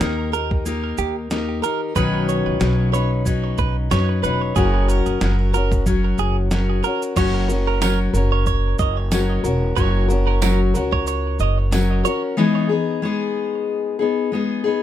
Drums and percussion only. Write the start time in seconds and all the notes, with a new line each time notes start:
0.01 snare, shaker
0.33 shaker
0.51 kick
0.66 shaker
0.98 shaker
1.31 snare, shaker
1.63 shaker
1.96 kick, shaker
2.29 shaker
2.61 snare, shaker
2.94 shaker
3.26 kick, shaker
3.58 kick, shaker
3.91 snare, shaker
4.24 shaker
4.56 kick, shaker
4.89 shaker
5.06 shaker
5.21 snare, shaker
5.54 shaker
5.72 kick, shaker
5.86 kick, shaker
6.18 shaker
6.51 snare, shaker
6.84 shaker
7.02 shaker
7.16 kick, crash, shaker
7.49 shaker
7.82 snare, tambourine, shaker
8.14 shaker
8.46 kick, shaker
8.79 kick, shaker
9.12 snare, tambourine, shaker
9.44 shaker
9.77 kick, shaker
10.10 shaker
10.42 snare, tambourine, shaker
10.75 shaker
10.92 kick
11.07 shaker
11.39 shaker
11.72 snare, tambourine, shaker
12.05 shaker